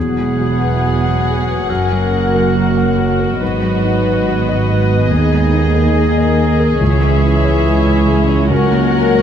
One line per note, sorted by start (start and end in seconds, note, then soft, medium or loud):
0.00 1.65 E1 soft
0.00 1.65 E2 soft
0.00 1.66 E2 soft
0.00 5.06 F#3 soft
0.00 1.66 B3 soft
0.00 5.07 F#4 soft
0.00 1.65 G#4 soft
0.00 1.71 G#4 soft
0.00 2.51 G#4 soft
0.00 3.37 F#5 soft
0.18 0.53 G#3 soft
0.40 0.75 F#4 soft
0.61 0.96 B4 soft
0.84 1.18 G#4 soft
1.06 1.40 F#5 soft
1.27 1.61 G#4 soft
1.49 1.70 B4 soft
1.69 3.38 F#1 medium
1.69 3.38 F#2 soft
1.69 3.37 F#2 soft
1.69 3.41 A#3 soft
1.69 3.41 A#4 soft
1.69 3.42 A#4 soft
1.92 2.26 F#3 soft
2.13 2.47 F#4 soft
2.34 2.68 A#4 soft
2.55 5.10 F#4 soft
2.55 2.90 F#4 soft
2.77 3.11 F#5 soft
2.98 3.32 F#4 soft
3.19 3.41 A#4 soft
3.40 5.07 G#1 medium
3.40 5.07 G#2 medium
3.40 5.06 G#2 soft
3.40 5.92 B3 soft
3.40 5.09 B4 soft
3.40 5.07 B4 soft
3.40 6.81 D#5 soft
3.63 3.96 F#3 soft
3.84 4.18 D#4 soft
4.06 4.39 B4 soft
4.27 4.60 F#4 soft
4.48 4.81 D#5 soft
4.70 5.02 F#4 soft
4.90 5.11 B4 soft
5.09 6.81 D#2 medium
5.09 6.77 D#2 soft
5.09 6.64 D#3 soft
5.09 6.51 D#4 soft
5.09 8.46 G#4 medium
5.09 8.50 G#4 medium
5.09 8.19 G#4 medium
5.32 5.66 G#3 soft
5.53 5.88 D#4 soft
5.75 6.09 A#4 soft
5.96 6.81 A#3 medium
5.96 6.30 G#4 soft
6.18 6.51 D#5 soft
6.38 6.72 G#4 soft
6.60 6.81 A#4 soft
6.80 8.46 C#2 medium
6.80 9.22 C#2 medium
6.80 8.48 E3 medium
6.80 9.22 C#4 medium
6.80 8.47 E4 medium
6.80 8.50 E5 medium
7.01 7.35 G#3 soft
7.22 7.56 E4 soft
7.44 7.78 C#5 soft
7.65 7.99 G#4 medium
7.86 8.21 E5 soft
8.07 8.42 G#4 soft
8.28 8.50 C#5 soft
8.49 9.22 C#2 medium
8.49 9.22 F#3 medium
8.49 9.22 F#4 medium
8.49 9.22 A#4 medium
8.49 9.22 F#5 medium
8.71 9.06 A#3 soft
8.93 9.22 F#4 soft
9.14 9.22 C#5 soft